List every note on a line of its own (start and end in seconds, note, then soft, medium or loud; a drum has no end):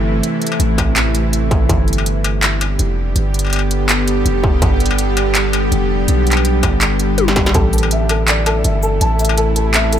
0.00 0.22 G1 medium
0.00 1.65 C3 medium
0.00 1.65 E3 medium
0.00 1.65 A3 medium
0.00 1.65 E4 medium
0.23 closed hi-hat medium
0.42 closed hi-hat soft
0.47 closed hi-hat medium
0.52 struck metal soft
0.60 1.68 A1 medium
0.60 closed hi-hat medium
0.78 kick medium
0.78 closed hi-hat medium
0.78 struck metal medium
0.96 clap loud
0.96 closed hi-hat medium
1.15 closed hi-hat medium
1.33 closed hi-hat medium
1.51 kick loud
1.51 closed hi-hat soft
1.69 2.78 G1 loud
1.69 7.51 D3 medium
1.69 7.51 G3 medium
1.69 7.50 B3 medium
1.69 7.51 G4 medium
1.69 kick loud
1.69 closed hi-hat medium
1.88 closed hi-hat soft
1.93 closed hi-hat medium
1.98 struck metal soft
2.06 closed hi-hat medium
2.24 closed hi-hat medium
2.24 struck metal medium
2.43 clap loud
2.43 closed hi-hat medium
2.61 closed hi-hat medium
2.61 struck metal medium
2.79 3.15 F1 loud
2.79 closed hi-hat medium
3.16 4.24 G1 loud
3.16 closed hi-hat medium
3.34 closed hi-hat soft
3.39 closed hi-hat medium
3.45 struck metal soft
3.47 struck metal soft
3.50 closed hi-hat medium
3.50 struck metal soft
3.53 struck metal soft
3.56 struck metal soft
3.59 struck metal soft
3.71 closed hi-hat medium
3.89 clap loud
3.89 closed hi-hat medium
4.08 closed hi-hat medium
4.25 4.61 F1 loud
4.25 closed hi-hat medium
4.44 kick loud
4.62 5.70 G1 medium
4.62 kick loud
4.62 closed hi-hat medium
4.80 closed hi-hat soft
4.86 closed hi-hat medium
4.91 struck metal medium
4.98 closed hi-hat medium
5.17 closed hi-hat medium
5.17 struck metal medium
5.35 clap loud
5.35 closed hi-hat medium
5.53 closed hi-hat medium
5.53 struck metal medium
5.72 6.07 F1 medium
5.72 closed hi-hat medium
6.08 6.62 B1 medium
6.08 closed hi-hat medium
6.27 closed hi-hat soft
6.32 clap medium
6.32 closed hi-hat medium
6.37 struck metal medium
6.45 closed hi-hat medium
6.63 7.53 G1 medium
6.63 kick medium
6.63 closed hi-hat medium
6.63 struck metal medium
6.81 clap loud
6.81 closed hi-hat medium
7.00 closed hi-hat medium
7.18 closed hi-hat medium
7.18 high tom medium
7.28 snare medium
7.36 kick loud
7.36 snare medium
7.36 closed hi-hat soft
7.46 snare medium
7.54 8.63 A1 medium
7.54 9.99 C3 medium
7.54 9.99 E3 medium
7.54 9.99 A3 medium
7.54 9.99 E4 medium
7.54 7.72 A4 loud
7.54 kick loud
7.54 closed hi-hat medium
7.73 7.90 A4 medium
7.73 closed hi-hat soft
7.73 shaker medium
7.78 closed hi-hat medium
7.83 struck metal medium
7.91 8.09 E5 medium
7.91 closed hi-hat medium
8.09 8.27 A4 medium
8.09 closed hi-hat medium
8.09 struck metal medium
8.28 8.45 D5 medium
8.28 clap loud
8.28 closed hi-hat medium
8.46 8.63 A4 loud
8.46 closed hi-hat medium
8.46 struck metal medium
8.64 9.00 G1 medium
8.64 8.81 E5 medium
8.64 closed hi-hat medium
8.83 9.00 A4 loud
8.83 shaker medium
9.01 9.99 A1 medium
9.01 9.18 A5 loud
9.01 closed hi-hat medium
9.19 9.31 E5 medium
9.19 closed hi-hat soft
9.19 shaker medium
9.25 closed hi-hat medium
9.29 struck metal medium
9.38 9.54 A4 loud
9.38 closed hi-hat medium
9.56 9.73 A4 medium
9.56 closed hi-hat medium
9.74 9.92 E5 medium
9.74 clap loud
9.74 closed hi-hat medium
9.93 9.99 A4 medium
9.93 closed hi-hat medium
9.93 shaker soft